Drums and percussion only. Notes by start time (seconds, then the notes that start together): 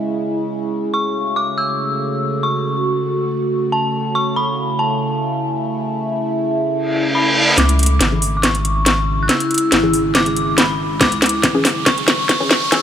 7.58 snare, closed hi-hat
7.69 closed hi-hat
7.79 closed hi-hat
7.83 closed hi-hat
7.86 closed hi-hat
8.01 snare, closed hi-hat
8.22 open hi-hat
8.43 snare, closed hi-hat
8.55 closed hi-hat
8.65 closed hi-hat
8.86 snare, closed hi-hat
9.29 snare, closed hi-hat
9.40 closed hi-hat
9.51 closed hi-hat
9.54 closed hi-hat
9.58 closed hi-hat
9.72 snare, closed hi-hat
9.93 open hi-hat
10.15 snare, closed hi-hat
10.26 closed hi-hat
10.36 closed hi-hat
10.58 snare, closed hi-hat
11.01 kick, snare, closed hi-hat
11.12 closed hi-hat
11.22 snare, closed hi-hat
11.26 closed hi-hat
11.29 closed hi-hat
11.43 kick, snare, closed hi-hat
11.65 snare, open hi-hat
11.86 kick, snare, closed hi-hat
11.98 closed hi-hat
12.08 snare, closed hi-hat
12.29 kick, snare, closed hi-hat
12.51 snare
12.72 kick, snare, closed hi-hat